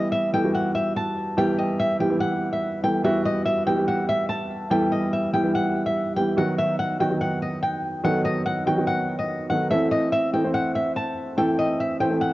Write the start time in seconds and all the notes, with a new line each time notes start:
Already playing: E3 G3 B3 E4 G4 D#5
0.12 E5
0.33 E3 G3 B3 E4 A4 G5
0.43 E3 G3 B3 E4 F#4
0.55 F#5
0.75 E5
0.96 A5
1.37 E3 G3 B3 E4 G4 G5
1.58 D#5
1.79 E5
1.99 E3 G3 B3 E4 G4 G5
2.10 E3 G3 B3 E4 G4
2.20 F#5
2.53 E5
2.83 E3 G3 B3 E4 A4 G5
3.03 E3 G3 B3 E4 F#4 E5
3.25 D#5
3.45 E5
3.66 E3 G3 B3 E4 G4 G5
3.77 E3 G3 B3 E4 G4
3.88 F#5
4.09 E5
4.29 A5
4.70 E3 G3 B3 E4 A4 G5
4.92 D#5
5.13 E5
5.33 E3 G3 B3 E4 G4 G5
5.43 E3 G3 B3 E4 G4
5.55 F#5
5.86 E5
6.16 E3 G3 B3 E4 G4 G5
6.37 D#3 F#3 B3 D#4 F#4 F#5
6.58 E5
6.79 F#5
6.99 D#3 F#3 B3 D#4 F#4 G5
7.10 D#3 F#3 B3 D#4 F#4
7.21 F#5
7.42 D#5
7.63 G5
8.04 D#3 F#3 B3 D#4 A4 F#5
8.25 D#5
8.46 F#5
8.66 D#3 F#3 B3 D#4 F#4 G5
8.77 D#3 F#3 B3 D#4 F#4
8.87 F#5
9.19 D#5
9.49 D#3 F#3 B3 D#4 A4 F#5
9.70 E3 A3 C4 E4 A4 E5
9.91 D#5
10.12 E5
10.33 E3 A3 C4 E4 A4 G5
10.43 E3 A3 C4 E4 C5
10.54 F#5
10.75 E5
10.96 A5
11.37 E3 A3 C4 E4 A4 G5
11.59 D#5
11.80 E5
11.99 E3 A3 C4 E4 C5 G5
12.10 E3 A3 C4 E4 A4
12.21 F#5